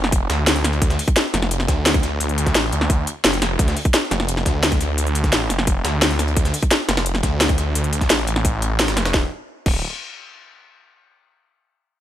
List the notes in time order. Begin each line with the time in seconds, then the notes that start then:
Already playing: F1
0.04 snare
0.12 kick, closed hi-hat
0.30 D2, snare, closed hi-hat
0.47 snare, closed hi-hat
0.56 closed hi-hat
0.64 snare, closed hi-hat
0.73 closed hi-hat
0.82 D2, kick, closed hi-hat
0.90 snare, closed hi-hat
0.99 closed hi-hat, open hi-hat
1.08 kick, closed hi-hat
1.16 snare, closed hi-hat
1.34 F1, snare, closed hi-hat
1.42 snare
1.51 closed hi-hat
1.60 snare, closed hi-hat
1.68 D2, kick, snare, closed hi-hat
1.86 snare, closed hi-hat
1.94 kick, closed hi-hat
2.03 snare, closed hi-hat
2.20 D2, closed hi-hat
2.29 closed hi-hat
2.38 closed hi-hat
2.46 kick, snare, closed hi-hat
2.55 A1, snare, closed hi-hat
2.72 D2, closed hi-hat
2.81 snare
2.90 kick, closed hi-hat
3.07 closed hi-hat
3.24 F1, snare, closed hi-hat, open hi-hat
3.33 closed hi-hat
3.42 snare, closed hi-hat
3.59 D2, kick, closed hi-hat
3.68 snare, closed hi-hat
3.77 closed hi-hat, open hi-hat
3.85 kick, closed hi-hat
3.94 snare, closed hi-hat
4.11 F1, snare, closed hi-hat
4.20 snare
4.29 closed hi-hat
4.37 snare, closed hi-hat
4.46 D2, kick, snare, closed hi-hat
4.63 snare, closed hi-hat
4.72 kick, closed hi-hat
4.81 snare, closed hi-hat
4.98 D2, closed hi-hat
5.07 closed hi-hat
5.15 closed hi-hat
5.24 kick, snare, closed hi-hat
5.33 A1, snare, closed hi-hat
5.50 F1, snare, closed hi-hat
5.59 snare
5.67 kick, closed hi-hat
5.85 D2, snare, closed hi-hat
6.02 snare, closed hi-hat
6.11 closed hi-hat
6.19 snare, closed hi-hat
6.28 closed hi-hat
6.37 D2, kick, closed hi-hat
6.45 snare, closed hi-hat
6.54 closed hi-hat, open hi-hat
6.63 kick, closed hi-hat
6.71 snare, closed hi-hat
6.89 F1, snare, closed hi-hat
6.97 snare, closed hi-hat
7.06 closed hi-hat
7.15 snare, closed hi-hat
7.23 D2, kick, snare, closed hi-hat
7.41 snare, closed hi-hat
7.49 kick, closed hi-hat
7.58 snare, closed hi-hat
7.75 D2, closed hi-hat
7.84 closed hi-hat
7.93 closed hi-hat
8.01 kick, snare, closed hi-hat
8.10 A1, snare, closed hi-hat, open hi-hat
8.19 closed hi-hat
8.27 A1, closed hi-hat
8.36 snare
8.45 kick, closed hi-hat
8.62 closed hi-hat
8.79 snare, closed hi-hat
8.88 snare, closed hi-hat
8.97 snare, closed hi-hat
9.05 snare, closed hi-hat
9.14 D1, kick, snare
9.66 D1, kick, crash